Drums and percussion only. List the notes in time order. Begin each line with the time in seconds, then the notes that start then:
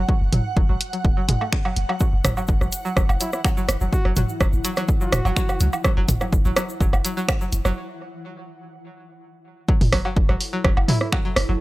0.09 kick
0.33 closed hi-hat, mid tom
0.57 kick
0.81 closed hi-hat
0.93 closed hi-hat
1.05 kick
1.29 closed hi-hat, mid tom
1.41 low woodblock
1.53 finger snap, kick
1.65 low woodblock
1.76 closed hi-hat
1.89 low woodblock
2.00 kick, shaker
2.25 kick, cross-stick, closed hi-hat, mid tom, shaker
2.37 low woodblock, shaker
2.47 kick, shaker
2.61 cross-stick, shaker
2.72 closed hi-hat, shaker
2.85 shaker
2.97 kick, cross-stick, shaker
3.09 low woodblock, shaker
3.20 closed hi-hat, shaker
3.33 cross-stick, shaker
3.45 finger snap, kick, low woodblock, shaker
3.57 shaker
3.69 cross-stick, closed hi-hat, shaker
3.81 shaker
3.93 kick, shaker
4.05 cross-stick
4.16 closed hi-hat, mid tom, shaker
4.29 shaker
4.40 kick, cross-stick, shaker
4.53 shaker
4.64 closed hi-hat, shaker
4.76 cross-stick, closed hi-hat, shaker
4.88 kick, shaker
5.01 shaker
5.12 cross-stick, closed hi-hat, mid tom, shaker
5.25 low woodblock, shaker
5.36 finger snap, kick, shaker
5.49 cross-stick, low woodblock, shaker
5.60 closed hi-hat, shaker
5.73 low woodblock, shaker
5.84 kick, cross-stick, shaker
6.08 kick, closed hi-hat, mid tom, shaker
6.21 cross-stick, low woodblock, shaker
6.33 kick, shaker
6.45 shaker
6.57 cross-stick, closed hi-hat, shaker
6.69 shaker
6.80 kick, shaker
6.93 cross-stick, low woodblock, shaker
7.05 closed hi-hat, shaker
7.17 shaker
7.28 finger snap, kick, cross-stick, low woodblock, shaker
7.41 shaker
7.52 closed hi-hat, shaker
7.65 cross-stick, shaker
9.68 kick
9.81 mid tom, open hi-hat
9.92 kick, cross-stick, open hi-hat
10.05 low woodblock
10.16 kick
10.29 cross-stick
10.41 open hi-hat
10.64 kick, cross-stick
10.77 low woodblock
10.88 mid tom, open hi-hat
11.01 cross-stick
11.12 finger snap, kick, low woodblock
11.36 cross-stick, open hi-hat